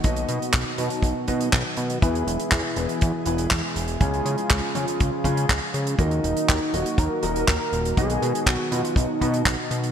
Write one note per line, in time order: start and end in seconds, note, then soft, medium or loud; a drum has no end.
0.00 0.75 B2 medium
0.00 2.00 B2 medium
0.00 1.98 D#3 medium
0.00 2.00 F#3 medium
0.00 1.98 D#4 medium
0.00 0.75 D#4 medium
0.00 1.98 F#4 medium
0.00 0.75 F#4 medium
0.00 0.75 B4 medium
0.00 0.75 D#5 medium
0.00 closed hi-hat medium
0.04 0.25 B1 loud
0.04 kick loud
0.16 closed hi-hat medium
0.29 0.39 B2 loud
0.29 closed hi-hat medium
0.42 closed hi-hat medium
0.53 0.64 B1 medium
0.53 kick loud
0.53 clap loud
0.53 closed hi-hat medium
0.78 0.89 B2 loud
0.78 1.25 B2 medium
0.78 1.25 D#4 medium
0.78 1.25 F#4 medium
0.78 1.25 B4 medium
0.78 1.25 D#5 medium
0.78 closed hi-hat medium
0.90 closed hi-hat medium
1.03 1.13 B1 medium
1.03 kick loud
1.03 closed hi-hat medium
1.28 1.45 B2 medium
1.28 1.49 B2 loud
1.28 1.45 D#4 medium
1.28 1.45 F#4 medium
1.28 1.45 B4 medium
1.28 1.45 D#5 loud
1.28 kick medium
1.28 closed hi-hat medium
1.41 closed hi-hat medium
1.53 1.63 B1 medium
1.53 kick loud
1.53 clap loud
1.53 closed hi-hat medium
1.77 1.99 B2 medium
1.77 closed hi-hat medium
1.90 closed hi-hat medium
2.02 2.24 E2 loud
2.02 3.99 B2 medium
2.02 2.74 E3 medium
2.02 3.99 E3 medium
2.02 5.95 G#3 medium
2.02 2.74 B3 medium
2.02 2.74 E4 medium
2.02 3.99 E4 medium
2.02 2.74 G#4 medium
2.02 5.95 G#4 medium
2.02 2.74 B4 medium
2.02 kick loud
2.02 closed hi-hat medium
2.15 closed hi-hat medium
2.27 2.38 E1 loud
2.27 closed hi-hat medium
2.40 closed hi-hat medium
2.52 2.62 E2 medium
2.52 kick loud
2.52 clap loud
2.52 closed hi-hat medium
2.76 2.87 E1 loud
2.76 3.23 E3 medium
2.76 3.23 B3 medium
2.76 3.23 E4 medium
2.76 3.23 G#4 medium
2.76 3.23 B4 medium
2.76 closed hi-hat medium
2.89 closed hi-hat medium
3.01 3.12 E2 medium
3.01 kick loud
3.01 closed hi-hat medium
3.26 3.47 E1 loud
3.26 3.44 E3 medium
3.26 3.44 B3 medium
3.26 3.44 E4 medium
3.26 3.44 G#4 medium
3.26 3.44 B4 loud
3.26 closed hi-hat medium
3.38 closed hi-hat medium
3.51 3.62 E2 medium
3.51 kick loud
3.51 clap loud
3.51 closed hi-hat medium
3.76 3.97 E1 medium
3.76 closed hi-hat medium
3.88 closed hi-hat medium
4.00 4.22 C#2 loud
4.00 4.72 C#3 medium
4.00 5.97 C#3 medium
4.00 5.97 F3 medium
4.00 4.72 G#3 medium
4.00 4.72 C#4 medium
4.00 4.72 F4 medium
4.00 5.97 F4 medium
4.00 4.72 G#4 medium
4.00 kick loud
4.00 closed hi-hat medium
4.14 closed hi-hat medium
4.25 4.36 C#3 loud
4.25 closed hi-hat medium
4.38 closed hi-hat medium
4.50 4.61 C#2 medium
4.50 kick loud
4.50 clap loud
4.50 closed hi-hat medium
4.75 4.86 C#3 loud
4.75 5.22 C#3 medium
4.75 5.22 G#3 medium
4.75 5.22 C#4 medium
4.75 5.22 F4 medium
4.75 5.22 G#4 medium
4.75 closed hi-hat medium
4.88 closed hi-hat medium
5.00 5.11 C#2 medium
5.00 kick loud
5.00 closed hi-hat medium
5.24 5.46 C#3 loud
5.24 5.42 C#3 medium
5.24 5.42 G#3 medium
5.24 5.42 C#4 medium
5.24 5.42 F4 medium
5.24 5.42 G#4 loud
5.24 kick medium
5.24 closed hi-hat medium
5.37 closed hi-hat medium
5.49 5.60 C#2 medium
5.49 kick loud
5.49 clap loud
5.49 closed hi-hat medium
5.74 5.95 C#3 medium
5.74 closed hi-hat medium
5.87 closed hi-hat medium
5.99 6.20 D#2 loud
5.99 7.95 A#2 medium
5.99 9.92 D#3 medium
5.99 6.70 D#3 medium
5.99 9.92 F#3 medium
5.99 6.70 D#4 medium
5.99 9.92 D#4 medium
5.99 6.75 D#4 loud
5.99 7.95 F#4 medium
5.99 6.70 F#4 medium
5.99 6.70 A#4 medium
5.99 6.70 D#5 medium
5.99 kick loud
5.99 closed hi-hat medium
6.11 closed hi-hat soft
6.24 6.34 D#1 loud
6.24 closed hi-hat medium
6.37 closed hi-hat medium
6.48 6.59 D#2 medium
6.48 kick loud
6.48 clap loud
6.48 closed hi-hat medium
6.73 6.84 D#1 medium
6.73 7.20 D#3 medium
6.73 7.20 D#4 medium
6.73 7.20 F#4 medium
6.73 7.00 F#4 loud
6.73 7.20 A#4 medium
6.73 7.20 D#5 medium
6.73 closed hi-hat medium
6.86 closed hi-hat medium
6.98 7.09 D#2 medium
6.98 7.97 A#4 loud
6.98 kick loud
6.98 closed hi-hat medium
7.23 7.44 D#1 loud
7.23 7.40 D#3 medium
7.23 7.40 D#4 medium
7.23 7.40 F#4 medium
7.23 7.40 A#4 medium
7.23 7.40 D#5 loud
7.23 closed hi-hat medium
7.36 closed hi-hat medium
7.48 7.58 D#2 medium
7.48 kick loud
7.48 clap loud
7.48 closed hi-hat medium
7.73 7.94 D#1 medium
7.73 closed hi-hat medium
7.85 closed hi-hat medium
7.97 8.19 B1 loud
7.97 8.69 B2 medium
7.97 9.92 B2 medium
7.97 8.69 D#4 medium
7.97 8.69 F#4 medium
7.97 9.92 F#4 medium
7.97 8.49 G#4 loud
7.97 8.69 B4 medium
7.97 8.69 D#5 medium
7.97 kick loud
7.97 closed hi-hat medium
8.10 closed hi-hat medium
8.22 8.33 B2 loud
8.22 closed hi-hat medium
8.35 closed hi-hat medium
8.46 8.57 B1 medium
8.46 8.74 F#4 loud
8.46 kick loud
8.46 clap loud
8.46 closed hi-hat medium
8.72 8.82 B2 medium
8.72 9.18 B2 medium
8.72 9.18 D#4 medium
8.72 8.98 F4 medium
8.72 9.18 F#4 medium
8.72 9.18 B4 medium
8.72 9.18 D#5 medium
8.72 closed hi-hat medium
8.85 closed hi-hat medium
8.96 9.07 B1 medium
8.96 9.71 D#4 medium
8.96 kick loud
8.96 closed hi-hat medium
9.21 9.39 B2 medium
9.21 9.43 B2 loud
9.21 9.39 D#4 medium
9.21 9.39 F#4 medium
9.21 9.39 B4 medium
9.21 9.39 D#5 loud
9.21 kick medium
9.21 closed hi-hat medium
9.34 closed hi-hat medium
9.45 9.56 B1 medium
9.45 kick loud
9.45 clap loud
9.45 closed hi-hat medium
9.71 9.92 B2 medium
9.71 closed hi-hat medium
9.84 closed hi-hat medium